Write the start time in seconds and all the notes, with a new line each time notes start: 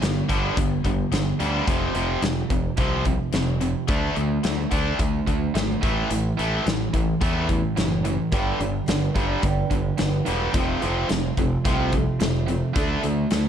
0.01 G1 G2 D3 G3 B3, snare, closed hi-hat
0.29 G1 G2 D3 G3 B3 D4, kick, closed hi-hat
0.56 G1 G2 D3 G3 B3, kick, closed hi-hat
0.84 G1 G2 D3 G3 B3, kick, closed hi-hat
1.12 G1 G2 D3 G3 B3, snare, closed hi-hat
1.39 D2 G2 D3 G3 B3 D4, closed hi-hat
1.67 F1 F2 C3 F3, kick, closed hi-hat
1.95 F1 F2 C3 F3, closed hi-hat
2.22 F1 F2 C3, snare, closed hi-hat
2.50 F1 F2 C3, kick, closed hi-hat
2.77 C2 F2 C3 F3, kick, closed hi-hat
3.05 F2 C3, kick, closed hi-hat
3.33 F1 F2 C3, snare, closed hi-hat
3.61 F2 C3, closed hi-hat
3.88 D2 D3 A3 D4, kick, closed hi-hat
4.16 D2 D3 A3, closed hi-hat
4.43 D2 D3 A3, snare, closed hi-hat
4.71 D2 D3 A3 D4, kick, closed hi-hat
4.99 D2 D3 A3, kick, closed hi-hat
5.27 D2 D3 A3, kick, closed hi-hat
5.55 G#1 D3 A3, snare, closed hi-hat
5.83 A1 A2 E3 A3, kick, closed hi-hat
6.11 A1 A2 E3, closed hi-hat
6.38 A1 A2 E3 A3, closed hi-hat
6.66 A1 A2 E3, snare, closed hi-hat
6.93 A1 A2 E3, kick, closed hi-hat
7.21 E2 A2 E3 A3, kick, closed hi-hat
7.49 A2 E3, kick, closed hi-hat
7.77 F#1 A2 E3, snare, closed hi-hat
8.05 A2 E3, closed hi-hat
8.32 G1 G2 D3 G3 B3 D4 G4, kick, closed hi-hat
8.59 G1 G2 D3 G3 B3 D4 G4, closed hi-hat
8.86 G1 G2 D3 G3 B3 D4 G4, snare, closed hi-hat
9.15 G1 G2 D3 G3 B3 D4 G4, kick, closed hi-hat
9.42 G1 G2 D3 G3 B3 D4 G4, kick, closed hi-hat
9.71 G1 G2 D3 G3 B3 D4 G4, kick, closed hi-hat
9.98 G1 G2 D3 G3 B3 D4 G4, snare, closed hi-hat
10.26 E1 G2 D3 G3 B3 D4 G4, closed hi-hat
10.54 F1 F2 C3 F3 A3 C4 F4, kick, closed hi-hat
10.81 F1 F2 C3 F3 A3 C4 F4, closed hi-hat
11.09 F1 F2 C3 F3 A3 C4 F4, snare, closed hi-hat
11.37 F1 F2 C3 F3 A3 C4 F4, kick, closed hi-hat
11.65 C2 F2 C3 F3 A3 C4 F4, kick, closed hi-hat
11.92 F2 C3 F3 A3 C4 F4, kick, closed hi-hat
12.19 F1 F2 C3 F3 A3 C4 F4, snare, closed hi-hat
12.48 F2 C3 F3 A3 C4 F4, closed hi-hat
12.76 D2 D3 A3 D4 F#4, kick, closed hi-hat
13.03 D2 D3 A3 D4 F#4, closed hi-hat
13.31 D2 D3 A3 D4 F#4, snare, closed hi-hat